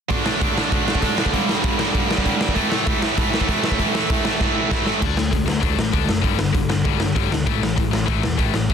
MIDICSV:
0, 0, Header, 1, 5, 480
1, 0, Start_track
1, 0, Tempo, 306905
1, 163, Time_signature, 4, 2, 24, 8
1, 13665, End_track
2, 0, Start_track
2, 0, Title_t, "Distorted electric guitar"
2, 0, Program_c, 0, 30
2, 842, Note_on_c, 0, 57, 77
2, 844, Note_on_c, 0, 50, 79
2, 1073, Note_off_c, 0, 50, 0
2, 1089, Note_off_c, 0, 57, 0
2, 13665, End_track
3, 0, Start_track
3, 0, Title_t, "Distorted electric guitar"
3, 0, Program_c, 1, 30
3, 152, Note_on_c, 1, 50, 77
3, 165, Note_on_c, 1, 57, 88
3, 167, Note_on_c, 1, 62, 94
3, 383, Note_off_c, 1, 57, 0
3, 390, Note_off_c, 1, 62, 0
3, 394, Note_off_c, 1, 50, 0
3, 396, Note_on_c, 1, 62, 86
3, 401, Note_on_c, 1, 57, 75
3, 413, Note_on_c, 1, 50, 64
3, 616, Note_off_c, 1, 50, 0
3, 629, Note_off_c, 1, 57, 0
3, 635, Note_on_c, 1, 50, 69
3, 645, Note_off_c, 1, 62, 0
3, 648, Note_on_c, 1, 57, 74
3, 651, Note_on_c, 1, 62, 82
3, 878, Note_off_c, 1, 62, 0
3, 897, Note_on_c, 1, 62, 100
3, 900, Note_off_c, 1, 57, 0
3, 902, Note_off_c, 1, 50, 0
3, 919, Note_on_c, 1, 57, 88
3, 924, Note_on_c, 1, 50, 84
3, 1096, Note_off_c, 1, 50, 0
3, 1103, Note_off_c, 1, 57, 0
3, 1115, Note_on_c, 1, 50, 76
3, 1117, Note_off_c, 1, 62, 0
3, 1122, Note_on_c, 1, 57, 87
3, 1135, Note_on_c, 1, 62, 86
3, 1348, Note_off_c, 1, 62, 0
3, 1358, Note_off_c, 1, 50, 0
3, 1363, Note_off_c, 1, 57, 0
3, 1366, Note_on_c, 1, 62, 106
3, 1377, Note_on_c, 1, 50, 86
3, 1381, Note_on_c, 1, 57, 94
3, 1606, Note_off_c, 1, 50, 0
3, 1609, Note_off_c, 1, 57, 0
3, 1619, Note_off_c, 1, 62, 0
3, 1625, Note_on_c, 1, 50, 65
3, 1628, Note_on_c, 1, 57, 78
3, 1637, Note_on_c, 1, 62, 83
3, 1838, Note_off_c, 1, 57, 0
3, 1842, Note_off_c, 1, 62, 0
3, 1856, Note_off_c, 1, 50, 0
3, 1857, Note_on_c, 1, 57, 74
3, 1861, Note_on_c, 1, 62, 73
3, 1875, Note_on_c, 1, 50, 66
3, 2074, Note_off_c, 1, 57, 0
3, 2076, Note_off_c, 1, 62, 0
3, 2083, Note_off_c, 1, 50, 0
3, 2086, Note_on_c, 1, 43, 78
3, 2100, Note_on_c, 1, 50, 89
3, 2105, Note_on_c, 1, 55, 93
3, 2299, Note_off_c, 1, 55, 0
3, 2309, Note_off_c, 1, 50, 0
3, 2314, Note_off_c, 1, 43, 0
3, 2318, Note_on_c, 1, 55, 89
3, 2328, Note_on_c, 1, 50, 80
3, 2333, Note_on_c, 1, 43, 69
3, 2524, Note_off_c, 1, 43, 0
3, 2534, Note_off_c, 1, 50, 0
3, 2543, Note_on_c, 1, 43, 79
3, 2549, Note_off_c, 1, 55, 0
3, 2553, Note_on_c, 1, 50, 66
3, 2568, Note_on_c, 1, 55, 89
3, 2752, Note_off_c, 1, 55, 0
3, 2760, Note_off_c, 1, 50, 0
3, 2771, Note_on_c, 1, 55, 90
3, 2776, Note_off_c, 1, 43, 0
3, 2779, Note_on_c, 1, 50, 84
3, 2795, Note_on_c, 1, 43, 80
3, 2994, Note_off_c, 1, 43, 0
3, 3005, Note_off_c, 1, 55, 0
3, 3010, Note_off_c, 1, 50, 0
3, 3013, Note_on_c, 1, 43, 73
3, 3024, Note_on_c, 1, 55, 89
3, 3029, Note_on_c, 1, 50, 78
3, 3243, Note_off_c, 1, 55, 0
3, 3253, Note_off_c, 1, 50, 0
3, 3260, Note_off_c, 1, 43, 0
3, 3262, Note_on_c, 1, 55, 104
3, 3272, Note_on_c, 1, 50, 87
3, 3278, Note_on_c, 1, 43, 85
3, 3501, Note_off_c, 1, 43, 0
3, 3520, Note_on_c, 1, 43, 75
3, 3523, Note_off_c, 1, 50, 0
3, 3531, Note_off_c, 1, 55, 0
3, 3542, Note_on_c, 1, 50, 83
3, 3549, Note_on_c, 1, 55, 91
3, 3720, Note_off_c, 1, 55, 0
3, 3736, Note_off_c, 1, 50, 0
3, 3738, Note_off_c, 1, 43, 0
3, 3739, Note_on_c, 1, 55, 85
3, 3755, Note_on_c, 1, 50, 75
3, 3757, Note_on_c, 1, 43, 64
3, 3970, Note_off_c, 1, 50, 0
3, 3974, Note_off_c, 1, 55, 0
3, 3976, Note_on_c, 1, 45, 85
3, 3983, Note_off_c, 1, 43, 0
3, 3988, Note_on_c, 1, 52, 94
3, 3992, Note_on_c, 1, 57, 105
3, 4219, Note_off_c, 1, 57, 0
3, 4225, Note_on_c, 1, 57, 98
3, 4227, Note_off_c, 1, 52, 0
3, 4233, Note_on_c, 1, 52, 91
3, 4242, Note_off_c, 1, 45, 0
3, 4248, Note_on_c, 1, 45, 70
3, 4451, Note_off_c, 1, 45, 0
3, 4457, Note_on_c, 1, 45, 77
3, 4464, Note_off_c, 1, 52, 0
3, 4470, Note_on_c, 1, 52, 80
3, 4471, Note_off_c, 1, 57, 0
3, 4477, Note_on_c, 1, 57, 89
3, 4715, Note_off_c, 1, 52, 0
3, 4720, Note_off_c, 1, 57, 0
3, 4726, Note_on_c, 1, 57, 96
3, 4731, Note_off_c, 1, 45, 0
3, 4733, Note_on_c, 1, 52, 94
3, 4753, Note_on_c, 1, 45, 87
3, 4941, Note_off_c, 1, 45, 0
3, 4951, Note_off_c, 1, 52, 0
3, 4959, Note_on_c, 1, 45, 70
3, 4969, Note_on_c, 1, 52, 77
3, 4970, Note_off_c, 1, 57, 0
3, 4976, Note_on_c, 1, 57, 103
3, 5155, Note_off_c, 1, 52, 0
3, 5166, Note_off_c, 1, 45, 0
3, 5169, Note_off_c, 1, 57, 0
3, 5174, Note_on_c, 1, 52, 93
3, 5176, Note_on_c, 1, 57, 99
3, 5185, Note_on_c, 1, 45, 87
3, 5413, Note_off_c, 1, 45, 0
3, 5416, Note_off_c, 1, 52, 0
3, 5432, Note_on_c, 1, 45, 67
3, 5435, Note_on_c, 1, 52, 65
3, 5446, Note_off_c, 1, 57, 0
3, 5452, Note_on_c, 1, 57, 85
3, 5665, Note_off_c, 1, 45, 0
3, 5667, Note_off_c, 1, 52, 0
3, 5677, Note_off_c, 1, 57, 0
3, 5684, Note_on_c, 1, 45, 73
3, 5684, Note_on_c, 1, 57, 88
3, 5686, Note_on_c, 1, 52, 84
3, 5913, Note_off_c, 1, 45, 0
3, 5916, Note_off_c, 1, 52, 0
3, 5931, Note_off_c, 1, 57, 0
3, 5932, Note_on_c, 1, 45, 92
3, 5935, Note_on_c, 1, 52, 86
3, 5950, Note_on_c, 1, 57, 96
3, 6127, Note_off_c, 1, 57, 0
3, 6145, Note_off_c, 1, 52, 0
3, 6146, Note_on_c, 1, 57, 85
3, 6149, Note_off_c, 1, 45, 0
3, 6164, Note_on_c, 1, 52, 82
3, 6168, Note_on_c, 1, 45, 71
3, 6395, Note_off_c, 1, 45, 0
3, 6411, Note_off_c, 1, 52, 0
3, 6413, Note_on_c, 1, 45, 70
3, 6414, Note_off_c, 1, 57, 0
3, 6430, Note_on_c, 1, 52, 74
3, 6432, Note_on_c, 1, 57, 85
3, 6629, Note_off_c, 1, 57, 0
3, 6630, Note_off_c, 1, 52, 0
3, 6640, Note_off_c, 1, 45, 0
3, 6647, Note_on_c, 1, 57, 104
3, 6648, Note_on_c, 1, 52, 95
3, 6659, Note_on_c, 1, 45, 74
3, 6870, Note_off_c, 1, 45, 0
3, 6889, Note_off_c, 1, 52, 0
3, 6889, Note_on_c, 1, 45, 72
3, 6894, Note_off_c, 1, 57, 0
3, 6908, Note_on_c, 1, 52, 81
3, 6913, Note_on_c, 1, 57, 78
3, 7087, Note_off_c, 1, 57, 0
3, 7102, Note_off_c, 1, 52, 0
3, 7105, Note_on_c, 1, 57, 98
3, 7107, Note_off_c, 1, 45, 0
3, 7121, Note_on_c, 1, 52, 91
3, 7126, Note_on_c, 1, 45, 87
3, 7329, Note_off_c, 1, 52, 0
3, 7330, Note_off_c, 1, 45, 0
3, 7345, Note_off_c, 1, 57, 0
3, 7348, Note_on_c, 1, 45, 72
3, 7348, Note_on_c, 1, 52, 79
3, 7364, Note_on_c, 1, 57, 73
3, 7555, Note_off_c, 1, 57, 0
3, 7565, Note_off_c, 1, 52, 0
3, 7573, Note_on_c, 1, 57, 79
3, 7583, Note_off_c, 1, 45, 0
3, 7584, Note_on_c, 1, 52, 68
3, 7602, Note_on_c, 1, 45, 67
3, 7809, Note_off_c, 1, 57, 0
3, 7815, Note_off_c, 1, 52, 0
3, 7823, Note_off_c, 1, 45, 0
3, 7833, Note_on_c, 1, 50, 77
3, 7833, Note_on_c, 1, 57, 78
3, 7852, Note_on_c, 1, 62, 90
3, 8034, Note_off_c, 1, 50, 0
3, 8051, Note_off_c, 1, 57, 0
3, 8053, Note_on_c, 1, 50, 70
3, 8069, Note_off_c, 1, 62, 0
3, 8070, Note_on_c, 1, 57, 71
3, 8279, Note_off_c, 1, 50, 0
3, 8288, Note_off_c, 1, 57, 0
3, 8304, Note_on_c, 1, 50, 72
3, 8308, Note_on_c, 1, 57, 76
3, 8518, Note_off_c, 1, 57, 0
3, 8525, Note_off_c, 1, 50, 0
3, 8537, Note_on_c, 1, 57, 79
3, 8541, Note_on_c, 1, 50, 68
3, 8743, Note_off_c, 1, 50, 0
3, 8745, Note_off_c, 1, 57, 0
3, 8762, Note_on_c, 1, 50, 83
3, 8764, Note_on_c, 1, 57, 79
3, 8790, Note_on_c, 1, 62, 95
3, 9003, Note_off_c, 1, 50, 0
3, 9005, Note_off_c, 1, 57, 0
3, 9018, Note_off_c, 1, 62, 0
3, 9030, Note_on_c, 1, 50, 64
3, 9038, Note_on_c, 1, 57, 64
3, 9248, Note_off_c, 1, 50, 0
3, 9252, Note_off_c, 1, 57, 0
3, 9266, Note_on_c, 1, 50, 72
3, 9283, Note_on_c, 1, 57, 75
3, 9284, Note_on_c, 1, 62, 73
3, 9462, Note_off_c, 1, 50, 0
3, 9481, Note_on_c, 1, 50, 61
3, 9484, Note_off_c, 1, 57, 0
3, 9503, Note_on_c, 1, 57, 69
3, 9505, Note_off_c, 1, 62, 0
3, 9714, Note_off_c, 1, 50, 0
3, 9720, Note_on_c, 1, 43, 87
3, 9725, Note_off_c, 1, 57, 0
3, 9741, Note_on_c, 1, 55, 91
3, 9742, Note_on_c, 1, 50, 85
3, 9952, Note_off_c, 1, 43, 0
3, 9961, Note_off_c, 1, 50, 0
3, 9971, Note_on_c, 1, 43, 65
3, 9974, Note_off_c, 1, 55, 0
3, 9980, Note_on_c, 1, 50, 78
3, 10190, Note_off_c, 1, 43, 0
3, 10204, Note_off_c, 1, 50, 0
3, 10209, Note_on_c, 1, 43, 76
3, 10226, Note_on_c, 1, 50, 82
3, 10438, Note_off_c, 1, 43, 0
3, 10447, Note_off_c, 1, 50, 0
3, 10463, Note_on_c, 1, 43, 71
3, 10471, Note_on_c, 1, 50, 72
3, 10686, Note_off_c, 1, 43, 0
3, 10690, Note_off_c, 1, 50, 0
3, 10705, Note_on_c, 1, 43, 77
3, 10711, Note_on_c, 1, 50, 88
3, 10727, Note_on_c, 1, 55, 101
3, 10936, Note_off_c, 1, 43, 0
3, 10940, Note_off_c, 1, 50, 0
3, 10948, Note_off_c, 1, 55, 0
3, 10958, Note_on_c, 1, 43, 66
3, 10968, Note_on_c, 1, 50, 85
3, 11161, Note_off_c, 1, 43, 0
3, 11178, Note_off_c, 1, 50, 0
3, 11180, Note_on_c, 1, 43, 74
3, 11198, Note_on_c, 1, 50, 77
3, 11204, Note_on_c, 1, 55, 94
3, 11414, Note_off_c, 1, 43, 0
3, 11423, Note_off_c, 1, 50, 0
3, 11426, Note_off_c, 1, 55, 0
3, 11452, Note_on_c, 1, 43, 67
3, 11452, Note_on_c, 1, 50, 64
3, 11661, Note_off_c, 1, 43, 0
3, 11661, Note_off_c, 1, 50, 0
3, 11672, Note_on_c, 1, 45, 81
3, 11691, Note_on_c, 1, 52, 89
3, 11695, Note_on_c, 1, 57, 88
3, 11884, Note_off_c, 1, 45, 0
3, 11903, Note_on_c, 1, 45, 75
3, 11911, Note_off_c, 1, 52, 0
3, 11913, Note_off_c, 1, 57, 0
3, 11929, Note_on_c, 1, 52, 79
3, 12123, Note_off_c, 1, 45, 0
3, 12135, Note_off_c, 1, 52, 0
3, 12142, Note_on_c, 1, 45, 75
3, 12154, Note_on_c, 1, 52, 77
3, 12357, Note_off_c, 1, 52, 0
3, 12364, Note_off_c, 1, 45, 0
3, 12376, Note_on_c, 1, 52, 81
3, 12382, Note_on_c, 1, 45, 73
3, 12584, Note_off_c, 1, 45, 0
3, 12584, Note_off_c, 1, 52, 0
3, 12603, Note_on_c, 1, 45, 96
3, 12603, Note_on_c, 1, 52, 107
3, 12627, Note_on_c, 1, 57, 105
3, 12837, Note_off_c, 1, 45, 0
3, 12848, Note_off_c, 1, 52, 0
3, 12856, Note_on_c, 1, 45, 78
3, 12860, Note_off_c, 1, 57, 0
3, 12882, Note_on_c, 1, 52, 89
3, 13077, Note_off_c, 1, 45, 0
3, 13089, Note_off_c, 1, 52, 0
3, 13096, Note_on_c, 1, 45, 85
3, 13107, Note_on_c, 1, 52, 84
3, 13115, Note_on_c, 1, 57, 80
3, 13335, Note_off_c, 1, 45, 0
3, 13341, Note_off_c, 1, 52, 0
3, 13345, Note_off_c, 1, 57, 0
3, 13358, Note_on_c, 1, 45, 64
3, 13370, Note_on_c, 1, 52, 61
3, 13577, Note_off_c, 1, 45, 0
3, 13583, Note_off_c, 1, 52, 0
3, 13610, Note_on_c, 1, 45, 76
3, 13613, Note_on_c, 1, 52, 87
3, 13665, Note_off_c, 1, 45, 0
3, 13665, Note_off_c, 1, 52, 0
3, 13665, End_track
4, 0, Start_track
4, 0, Title_t, "Picked electric bass"
4, 0, Program_c, 2, 34
4, 7855, Note_on_c, 2, 38, 98
4, 8060, Note_off_c, 2, 38, 0
4, 8069, Note_on_c, 2, 38, 86
4, 8297, Note_off_c, 2, 38, 0
4, 8332, Note_on_c, 2, 38, 77
4, 8543, Note_off_c, 2, 38, 0
4, 8552, Note_on_c, 2, 38, 82
4, 8779, Note_off_c, 2, 38, 0
4, 8808, Note_on_c, 2, 38, 92
4, 9009, Note_off_c, 2, 38, 0
4, 9018, Note_on_c, 2, 33, 81
4, 9252, Note_off_c, 2, 33, 0
4, 9287, Note_on_c, 2, 38, 80
4, 9483, Note_off_c, 2, 38, 0
4, 9492, Note_on_c, 2, 30, 76
4, 9729, Note_off_c, 2, 30, 0
4, 9768, Note_on_c, 2, 31, 93
4, 9980, Note_off_c, 2, 31, 0
4, 9990, Note_on_c, 2, 31, 86
4, 10218, Note_off_c, 2, 31, 0
4, 10244, Note_on_c, 2, 31, 88
4, 10441, Note_off_c, 2, 31, 0
4, 10451, Note_on_c, 2, 31, 90
4, 10689, Note_off_c, 2, 31, 0
4, 10719, Note_on_c, 2, 31, 102
4, 10939, Note_off_c, 2, 31, 0
4, 10949, Note_on_c, 2, 31, 81
4, 11179, Note_off_c, 2, 31, 0
4, 11199, Note_on_c, 2, 31, 96
4, 11424, Note_off_c, 2, 31, 0
4, 11443, Note_on_c, 2, 38, 89
4, 11667, Note_off_c, 2, 38, 0
4, 11687, Note_on_c, 2, 33, 95
4, 11909, Note_off_c, 2, 33, 0
4, 11922, Note_on_c, 2, 33, 77
4, 12147, Note_off_c, 2, 33, 0
4, 12167, Note_on_c, 2, 33, 84
4, 12389, Note_off_c, 2, 33, 0
4, 12397, Note_on_c, 2, 33, 85
4, 12625, Note_off_c, 2, 33, 0
4, 12640, Note_on_c, 2, 33, 97
4, 12866, Note_off_c, 2, 33, 0
4, 12886, Note_on_c, 2, 28, 83
4, 13110, Note_off_c, 2, 28, 0
4, 13118, Note_on_c, 2, 33, 78
4, 13346, Note_off_c, 2, 33, 0
4, 13354, Note_on_c, 2, 33, 84
4, 13584, Note_off_c, 2, 33, 0
4, 13602, Note_on_c, 2, 33, 92
4, 13665, Note_off_c, 2, 33, 0
4, 13665, End_track
5, 0, Start_track
5, 0, Title_t, "Drums"
5, 157, Note_on_c, 9, 46, 48
5, 164, Note_on_c, 9, 36, 89
5, 314, Note_off_c, 9, 46, 0
5, 320, Note_off_c, 9, 36, 0
5, 402, Note_on_c, 9, 38, 98
5, 558, Note_off_c, 9, 38, 0
5, 649, Note_on_c, 9, 36, 116
5, 657, Note_on_c, 9, 46, 54
5, 805, Note_off_c, 9, 36, 0
5, 813, Note_off_c, 9, 46, 0
5, 899, Note_on_c, 9, 38, 94
5, 1055, Note_off_c, 9, 38, 0
5, 1127, Note_on_c, 9, 36, 99
5, 1131, Note_on_c, 9, 46, 52
5, 1283, Note_off_c, 9, 36, 0
5, 1287, Note_off_c, 9, 46, 0
5, 1376, Note_on_c, 9, 38, 106
5, 1487, Note_on_c, 9, 36, 81
5, 1532, Note_off_c, 9, 38, 0
5, 1594, Note_on_c, 9, 46, 59
5, 1603, Note_off_c, 9, 36, 0
5, 1603, Note_on_c, 9, 36, 84
5, 1751, Note_off_c, 9, 46, 0
5, 1759, Note_off_c, 9, 36, 0
5, 1845, Note_on_c, 9, 38, 104
5, 1969, Note_on_c, 9, 36, 79
5, 2001, Note_off_c, 9, 38, 0
5, 2088, Note_on_c, 9, 46, 51
5, 2089, Note_off_c, 9, 36, 0
5, 2089, Note_on_c, 9, 36, 71
5, 2244, Note_off_c, 9, 46, 0
5, 2245, Note_off_c, 9, 36, 0
5, 2333, Note_on_c, 9, 38, 99
5, 2490, Note_off_c, 9, 38, 0
5, 2563, Note_on_c, 9, 46, 55
5, 2566, Note_on_c, 9, 36, 104
5, 2720, Note_off_c, 9, 46, 0
5, 2722, Note_off_c, 9, 36, 0
5, 2802, Note_on_c, 9, 38, 105
5, 2958, Note_off_c, 9, 38, 0
5, 3046, Note_on_c, 9, 36, 96
5, 3049, Note_on_c, 9, 46, 53
5, 3203, Note_off_c, 9, 36, 0
5, 3205, Note_off_c, 9, 46, 0
5, 3294, Note_on_c, 9, 38, 106
5, 3408, Note_on_c, 9, 36, 77
5, 3450, Note_off_c, 9, 38, 0
5, 3530, Note_off_c, 9, 36, 0
5, 3530, Note_on_c, 9, 36, 97
5, 3536, Note_on_c, 9, 46, 47
5, 3687, Note_off_c, 9, 36, 0
5, 3692, Note_off_c, 9, 46, 0
5, 3765, Note_on_c, 9, 38, 105
5, 3886, Note_on_c, 9, 36, 75
5, 3921, Note_off_c, 9, 38, 0
5, 3997, Note_on_c, 9, 46, 45
5, 4006, Note_off_c, 9, 36, 0
5, 4006, Note_on_c, 9, 36, 80
5, 4154, Note_off_c, 9, 46, 0
5, 4162, Note_off_c, 9, 36, 0
5, 4248, Note_on_c, 9, 38, 100
5, 4405, Note_off_c, 9, 38, 0
5, 4483, Note_on_c, 9, 46, 53
5, 4487, Note_on_c, 9, 36, 111
5, 4640, Note_off_c, 9, 46, 0
5, 4643, Note_off_c, 9, 36, 0
5, 4730, Note_on_c, 9, 38, 111
5, 4886, Note_off_c, 9, 38, 0
5, 4964, Note_on_c, 9, 46, 56
5, 4970, Note_on_c, 9, 36, 101
5, 5120, Note_off_c, 9, 46, 0
5, 5127, Note_off_c, 9, 36, 0
5, 5218, Note_on_c, 9, 38, 95
5, 5333, Note_on_c, 9, 36, 82
5, 5375, Note_off_c, 9, 38, 0
5, 5452, Note_off_c, 9, 36, 0
5, 5452, Note_on_c, 9, 36, 98
5, 5456, Note_on_c, 9, 46, 55
5, 5609, Note_off_c, 9, 36, 0
5, 5612, Note_off_c, 9, 46, 0
5, 5686, Note_on_c, 9, 38, 112
5, 5810, Note_on_c, 9, 36, 81
5, 5842, Note_off_c, 9, 38, 0
5, 5928, Note_on_c, 9, 46, 50
5, 5932, Note_off_c, 9, 36, 0
5, 5932, Note_on_c, 9, 36, 80
5, 6084, Note_off_c, 9, 46, 0
5, 6089, Note_off_c, 9, 36, 0
5, 6175, Note_on_c, 9, 38, 102
5, 6332, Note_off_c, 9, 38, 0
5, 6409, Note_on_c, 9, 46, 58
5, 6412, Note_on_c, 9, 36, 113
5, 6565, Note_off_c, 9, 46, 0
5, 6569, Note_off_c, 9, 36, 0
5, 6646, Note_on_c, 9, 38, 106
5, 6803, Note_off_c, 9, 38, 0
5, 6890, Note_on_c, 9, 38, 53
5, 6894, Note_on_c, 9, 36, 100
5, 7047, Note_off_c, 9, 38, 0
5, 7051, Note_off_c, 9, 36, 0
5, 7372, Note_on_c, 9, 36, 105
5, 7372, Note_on_c, 9, 38, 78
5, 7528, Note_off_c, 9, 36, 0
5, 7528, Note_off_c, 9, 38, 0
5, 7606, Note_on_c, 9, 38, 79
5, 7763, Note_off_c, 9, 38, 0
5, 7853, Note_on_c, 9, 36, 93
5, 7854, Note_on_c, 9, 49, 91
5, 8009, Note_off_c, 9, 36, 0
5, 8011, Note_off_c, 9, 49, 0
5, 8090, Note_on_c, 9, 38, 101
5, 8246, Note_off_c, 9, 38, 0
5, 8333, Note_on_c, 9, 36, 105
5, 8337, Note_on_c, 9, 46, 58
5, 8489, Note_off_c, 9, 36, 0
5, 8493, Note_off_c, 9, 46, 0
5, 8568, Note_on_c, 9, 38, 112
5, 8724, Note_off_c, 9, 38, 0
5, 8799, Note_on_c, 9, 46, 55
5, 8803, Note_on_c, 9, 36, 102
5, 8955, Note_off_c, 9, 46, 0
5, 8960, Note_off_c, 9, 36, 0
5, 9050, Note_on_c, 9, 38, 103
5, 9206, Note_off_c, 9, 38, 0
5, 9278, Note_on_c, 9, 46, 54
5, 9283, Note_on_c, 9, 36, 103
5, 9435, Note_off_c, 9, 46, 0
5, 9439, Note_off_c, 9, 36, 0
5, 9521, Note_on_c, 9, 38, 97
5, 9677, Note_off_c, 9, 38, 0
5, 9759, Note_on_c, 9, 36, 92
5, 9759, Note_on_c, 9, 46, 51
5, 9915, Note_off_c, 9, 36, 0
5, 9916, Note_off_c, 9, 46, 0
5, 9990, Note_on_c, 9, 38, 99
5, 10146, Note_off_c, 9, 38, 0
5, 10238, Note_on_c, 9, 36, 107
5, 10238, Note_on_c, 9, 46, 54
5, 10394, Note_off_c, 9, 36, 0
5, 10394, Note_off_c, 9, 46, 0
5, 10473, Note_on_c, 9, 38, 108
5, 10629, Note_off_c, 9, 38, 0
5, 10712, Note_on_c, 9, 46, 47
5, 10717, Note_on_c, 9, 36, 106
5, 10868, Note_off_c, 9, 46, 0
5, 10873, Note_off_c, 9, 36, 0
5, 10947, Note_on_c, 9, 38, 102
5, 11103, Note_off_c, 9, 38, 0
5, 11200, Note_on_c, 9, 36, 100
5, 11205, Note_on_c, 9, 46, 48
5, 11356, Note_off_c, 9, 36, 0
5, 11361, Note_off_c, 9, 46, 0
5, 11452, Note_on_c, 9, 38, 99
5, 11608, Note_off_c, 9, 38, 0
5, 11682, Note_on_c, 9, 36, 96
5, 11683, Note_on_c, 9, 46, 48
5, 11839, Note_off_c, 9, 36, 0
5, 11839, Note_off_c, 9, 46, 0
5, 11936, Note_on_c, 9, 38, 99
5, 12093, Note_off_c, 9, 38, 0
5, 12164, Note_on_c, 9, 36, 114
5, 12172, Note_on_c, 9, 46, 55
5, 12320, Note_off_c, 9, 36, 0
5, 12328, Note_off_c, 9, 46, 0
5, 12407, Note_on_c, 9, 38, 108
5, 12563, Note_off_c, 9, 38, 0
5, 12638, Note_on_c, 9, 46, 52
5, 12640, Note_on_c, 9, 36, 100
5, 12795, Note_off_c, 9, 46, 0
5, 12796, Note_off_c, 9, 36, 0
5, 12877, Note_on_c, 9, 38, 107
5, 13033, Note_off_c, 9, 38, 0
5, 13116, Note_on_c, 9, 46, 54
5, 13121, Note_on_c, 9, 36, 107
5, 13272, Note_off_c, 9, 46, 0
5, 13277, Note_off_c, 9, 36, 0
5, 13353, Note_on_c, 9, 38, 97
5, 13509, Note_off_c, 9, 38, 0
5, 13601, Note_on_c, 9, 46, 49
5, 13604, Note_on_c, 9, 36, 102
5, 13665, Note_off_c, 9, 36, 0
5, 13665, Note_off_c, 9, 46, 0
5, 13665, End_track
0, 0, End_of_file